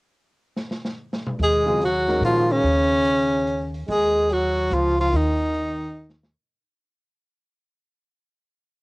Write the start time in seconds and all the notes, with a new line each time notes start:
0.57 snare
0.71 snare
0.85 snare
1.13 snare
1.27 mid tom
1.39 D#2 G#3, open hi-hat
1.43 G#4
1.66 C#3 F#3 C4 F4 G#4
1.81 F#3 F#4, closed hi-hat
2.08 D#3 G#3 C#4 F#4 A#4, snare, open hi-hat
2.21 A#2 F3 F4, closed hi-hat
2.49 C#3 C#4, open hi-hat
2.63 D#2, open hi-hat
3.05 closed hi-hat
3.33 open hi-hat
3.47 closed hi-hat
3.74 open hi-hat
3.88 D#2 G#3 G#4, open hi-hat
4.29 F#3 F#4, closed hi-hat
4.57 open hi-hat
4.71 C#2 F3 F4, closed hi-hat
4.99 F3 F4, open hi-hat
5.12 D#2 D#3, open hi-hat
5.16 D#4
5.54 closed hi-hat
5.81 open hi-hat
6.10 snare
6.24 snare